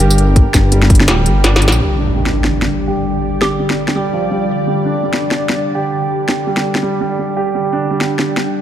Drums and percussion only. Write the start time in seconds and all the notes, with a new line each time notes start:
0.00 closed hi-hat
0.10 tambourine
0.18 closed hi-hat
0.36 kick, closed hi-hat
0.54 kick, snare, closed hi-hat, tambourine
0.72 closed hi-hat
0.82 snare
0.90 kick, closed hi-hat
0.95 closed hi-hat
1.00 snare
1.08 snare, closed hi-hat
1.26 closed hi-hat
1.44 snare, closed hi-hat
1.56 snare
1.62 closed hi-hat
1.68 snare
1.72 tambourine
2.26 snare
2.44 snare
2.62 snare
3.42 snare
3.70 snare
3.88 snare
5.13 snare
5.31 snare
5.49 snare
6.28 snare
6.57 snare
6.75 snare
8.01 snare
8.19 snare
8.37 snare